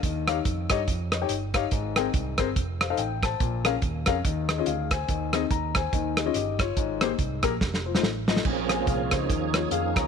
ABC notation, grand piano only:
X:1
M:4/4
L:1/16
Q:"Swing" 1/4=142
K:Ab
V:1 name="Grand piano"
z2 [EGdf] z3 [EGde] z3 [de] [EGdg] z2 [EGdf] z | z2 [CABg] z3 [CABc] z3 [cf] [E=Acf] g2 [c=a]2- | [c=a]2 [D_ABf] z3 [DABf] z3 [Ae] [DFAe] [Af]2 [c_a]2- | [ca]2 [CEAe] z b2 [ca]4 [Ae] [DFAe] [Ge]2 [Fd]2- |
[Fd]2 [B,GAc] z3 [B,GAB] z3 [Fc] [=A,EFc] z2 [A,EFe] z | z2 [ca]2 [Af]2 [Ec]4 [Fd]2 [Af]2 [db]2 |]
V:2 name="Grand piano" clef=bass
E,6 z8 z2 | A,,6 z8 z2 | B,,6 z2 E,6 z2 | E,6 z2 E,6 z2 |
A,,6 z8 z2 | B,,6 z2 E,6 z2 |]